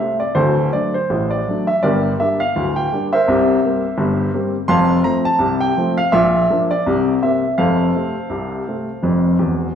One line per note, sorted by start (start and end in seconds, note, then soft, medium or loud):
0.00 0.20 C3 soft
0.00 0.20 A3 soft
0.00 0.21 C4 soft
0.00 0.13 E5 medium
0.20 0.36 D5 medium
0.35 0.67 D1 medium
0.35 0.67 D2 medium
0.35 0.70 F#4 medium
0.35 0.70 A4 medium
0.35 0.65 C5 medium
0.73 0.94 F#3 soft
0.73 0.94 A3 soft
0.73 0.94 D4 soft
0.73 0.94 D5 medium
0.94 1.28 C5 medium
1.10 1.40 A1 medium
1.10 1.41 A2 medium
1.31 1.64 D5 medium
1.48 1.67 F#3 soft
1.48 1.67 A3 soft
1.48 1.68 D4 soft
1.67 1.82 E5 medium
1.83 2.13 G1 medium
1.83 2.13 G2 medium
1.83 2.16 G4 medium
1.83 2.16 A#4 medium
1.83 2.11 D5 medium
2.20 2.39 G3 soft
2.20 2.39 A#3 soft
2.20 2.39 D4 soft
2.20 2.39 E5 medium
2.40 2.73 F5 medium
2.56 2.85 D1 medium
2.56 2.86 D2 medium
2.76 3.04 G5 medium
2.92 3.11 G3 soft
2.92 3.12 A#3 soft
2.92 3.12 D4 soft
3.13 4.67 A#4 medium
3.13 4.67 C5 medium
3.13 4.39 E5 medium
3.28 3.57 C2 medium
3.28 3.58 C3 medium
3.64 3.83 G3 soft
3.64 3.83 A#3 medium
3.64 3.84 C4 medium
3.98 4.28 G1 medium
3.98 4.28 G2 medium
4.34 4.54 G3 medium
4.34 4.54 A#3 soft
4.34 4.55 C4 medium
4.68 4.99 F1 medium
4.68 5.00 F2 medium
4.68 5.03 F5 medium
4.68 5.03 A5 medium
4.68 5.03 C6 loud
5.04 5.25 F3 medium
5.04 5.25 A3 soft
5.04 5.25 C4 medium
5.04 5.25 A#5 medium
5.25 5.54 A5 loud
5.39 5.71 C2 medium
5.39 5.71 C3 medium
5.60 5.90 G5 loud
5.77 5.97 F3 soft
5.77 5.98 A3 medium
5.77 5.98 C4 medium
5.98 6.14 F5 medium
6.12 6.44 A#1 medium
6.12 6.44 A#2 medium
6.12 6.58 E5 loud
6.50 6.70 F3 medium
6.50 6.70 A#3 medium
6.50 6.71 D4 medium
6.71 7.12 D5 medium
6.86 7.17 C2 medium
6.86 7.17 C3 medium
7.23 7.43 C3 soft
7.23 7.43 A#3 soft
7.23 7.43 C4 soft
7.23 7.52 E5 medium
7.58 7.90 F1 medium
7.58 7.90 F2 medium
7.58 9.74 A4 medium
7.58 9.73 C5 medium
7.58 9.73 F5 medium
7.95 8.15 C3 soft
7.95 8.15 A3 soft
7.95 8.16 C4 soft
8.30 8.62 C2 medium
8.30 8.62 C3 medium
8.67 8.88 C3 soft
8.67 8.88 A3 soft
8.67 8.88 C4 soft
9.03 9.34 F1 medium
9.03 9.35 F2 medium
9.39 9.67 E1 medium
9.39 9.67 E2 medium